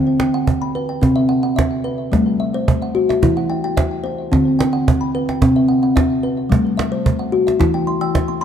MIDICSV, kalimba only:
0, 0, Header, 1, 2, 480
1, 0, Start_track
1, 0, Key_signature, 1, "minor"
1, 0, Tempo, 548446
1, 898, Time_signature, 4, 2, 24, 8
1, 7390, End_track
2, 0, Start_track
2, 0, Title_t, "Kalimba"
2, 0, Program_c, 0, 108
2, 0, Note_on_c, 0, 50, 65
2, 0, Note_on_c, 0, 60, 62
2, 172, Note_on_c, 0, 79, 56
2, 176, Note_off_c, 0, 60, 0
2, 299, Note_on_c, 0, 78, 66
2, 539, Note_on_c, 0, 83, 53
2, 541, Note_off_c, 0, 79, 0
2, 542, Note_off_c, 0, 78, 0
2, 658, Note_on_c, 0, 71, 61
2, 779, Note_on_c, 0, 79, 49
2, 879, Note_off_c, 0, 50, 0
2, 889, Note_on_c, 0, 60, 66
2, 896, Note_off_c, 0, 83, 0
2, 896, Note_on_c, 0, 48, 60
2, 898, Note_off_c, 0, 71, 0
2, 1012, Note_on_c, 0, 76, 60
2, 1022, Note_off_c, 0, 79, 0
2, 1128, Note_on_c, 0, 78, 62
2, 1134, Note_off_c, 0, 60, 0
2, 1242, Note_off_c, 0, 78, 0
2, 1252, Note_on_c, 0, 78, 63
2, 1357, Note_off_c, 0, 76, 0
2, 1368, Note_on_c, 0, 76, 61
2, 1499, Note_off_c, 0, 78, 0
2, 1613, Note_on_c, 0, 71, 59
2, 1740, Note_off_c, 0, 76, 0
2, 1840, Note_off_c, 0, 48, 0
2, 1853, Note_on_c, 0, 55, 64
2, 1857, Note_off_c, 0, 71, 0
2, 1865, Note_on_c, 0, 57, 70
2, 2097, Note_off_c, 0, 55, 0
2, 2100, Note_on_c, 0, 76, 58
2, 2227, Note_on_c, 0, 72, 70
2, 2467, Note_off_c, 0, 72, 0
2, 2467, Note_off_c, 0, 76, 0
2, 2471, Note_on_c, 0, 78, 52
2, 2580, Note_on_c, 0, 66, 69
2, 2708, Note_on_c, 0, 76, 57
2, 2805, Note_off_c, 0, 57, 0
2, 2821, Note_off_c, 0, 66, 0
2, 2822, Note_on_c, 0, 52, 65
2, 2823, Note_off_c, 0, 78, 0
2, 2824, Note_on_c, 0, 64, 72
2, 2948, Note_off_c, 0, 76, 0
2, 2949, Note_on_c, 0, 78, 55
2, 3060, Note_on_c, 0, 79, 59
2, 3063, Note_off_c, 0, 64, 0
2, 3177, Note_off_c, 0, 79, 0
2, 3187, Note_on_c, 0, 79, 62
2, 3297, Note_on_c, 0, 76, 54
2, 3303, Note_off_c, 0, 78, 0
2, 3428, Note_off_c, 0, 79, 0
2, 3532, Note_on_c, 0, 72, 64
2, 3666, Note_off_c, 0, 76, 0
2, 3763, Note_off_c, 0, 52, 0
2, 3778, Note_off_c, 0, 72, 0
2, 3778, Note_on_c, 0, 50, 66
2, 3778, Note_on_c, 0, 60, 65
2, 4017, Note_on_c, 0, 79, 62
2, 4020, Note_off_c, 0, 60, 0
2, 4139, Note_on_c, 0, 78, 64
2, 4383, Note_on_c, 0, 83, 51
2, 4384, Note_off_c, 0, 78, 0
2, 4386, Note_off_c, 0, 79, 0
2, 4505, Note_on_c, 0, 71, 69
2, 4630, Note_on_c, 0, 79, 53
2, 4721, Note_off_c, 0, 50, 0
2, 4740, Note_off_c, 0, 83, 0
2, 4741, Note_on_c, 0, 60, 65
2, 4744, Note_off_c, 0, 71, 0
2, 4749, Note_on_c, 0, 48, 59
2, 4867, Note_on_c, 0, 76, 51
2, 4869, Note_off_c, 0, 79, 0
2, 4976, Note_on_c, 0, 78, 60
2, 4981, Note_off_c, 0, 60, 0
2, 5091, Note_off_c, 0, 78, 0
2, 5101, Note_on_c, 0, 78, 59
2, 5204, Note_off_c, 0, 76, 0
2, 5214, Note_on_c, 0, 76, 57
2, 5344, Note_off_c, 0, 78, 0
2, 5455, Note_on_c, 0, 71, 62
2, 5583, Note_off_c, 0, 76, 0
2, 5685, Note_off_c, 0, 48, 0
2, 5685, Note_on_c, 0, 55, 58
2, 5698, Note_off_c, 0, 71, 0
2, 5700, Note_on_c, 0, 57, 63
2, 5929, Note_on_c, 0, 76, 56
2, 5932, Note_off_c, 0, 55, 0
2, 6055, Note_on_c, 0, 72, 61
2, 6296, Note_on_c, 0, 78, 54
2, 6299, Note_off_c, 0, 72, 0
2, 6300, Note_off_c, 0, 76, 0
2, 6410, Note_on_c, 0, 66, 68
2, 6537, Note_on_c, 0, 76, 52
2, 6637, Note_off_c, 0, 57, 0
2, 6648, Note_on_c, 0, 52, 69
2, 6649, Note_on_c, 0, 64, 72
2, 6652, Note_off_c, 0, 78, 0
2, 6653, Note_off_c, 0, 66, 0
2, 6775, Note_on_c, 0, 79, 60
2, 6779, Note_off_c, 0, 76, 0
2, 6890, Note_on_c, 0, 84, 59
2, 6891, Note_off_c, 0, 64, 0
2, 7003, Note_off_c, 0, 79, 0
2, 7012, Note_on_c, 0, 88, 60
2, 7013, Note_on_c, 0, 79, 68
2, 7239, Note_off_c, 0, 84, 0
2, 7249, Note_on_c, 0, 84, 54
2, 7256, Note_off_c, 0, 79, 0
2, 7354, Note_off_c, 0, 84, 0
2, 7362, Note_on_c, 0, 83, 55
2, 7368, Note_off_c, 0, 88, 0
2, 7390, Note_off_c, 0, 52, 0
2, 7390, Note_off_c, 0, 83, 0
2, 7390, End_track
0, 0, End_of_file